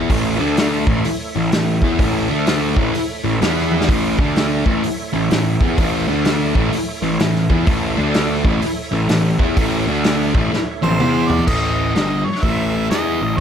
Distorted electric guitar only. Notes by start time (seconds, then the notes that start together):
Already playing: B3 E4
0.11 A2 E3 A3
0.40 D3 A3 D4
0.87 A2 E3 A3
1.06 muted distorted electric guitar stroke
1.35 A2 E3
1.53 A2 E3
1.83 E3 B3 E4
2.00 A2 E3 A3
2.29 D3 A3 D4
2.76 A2 E3 A3
2.95 muted distorted electric guitar stroke
3.24 A2 E3
3.42 E3 B3 E4
3.89 A2 E3 A3
4.19 D3 A3 D4
4.66 A2 E3 A3
4.84 muted distorted electric guitar stroke
5.13 A2 E3
5.30 A2 E3
5.61 E3 B3 E4
5.78 A2 E3 A3
6.08 D3 A3 D4
6.55 A2 E3 A3
6.73 muted distorted electric guitar stroke
7.03 A2 E3
7.20 A2 E3
7.50 E3 B3 E4
7.67 A2 E3 A3
7.97 D3 A3 D4
8.44 A2 E3 A3
8.62 muted distorted electric guitar stroke
8.92 A2 E3
9.09 A2 E3
9.39 E3 B3 E4
9.57 A2 E3 A3
9.87 D3 A3 D4
10.34 A2 E3 A3
10.52 muted distorted electric guitar stroke
10.83 A2 E3
11.01 E3 B3 E4
11.47 A2 E3 A3
11.95 G2 D3 G3
12.26 muted distorted electric guitar stroke
12.43 A2 E3 A3
12.91 E3 B3 E4
13.21 A2 E3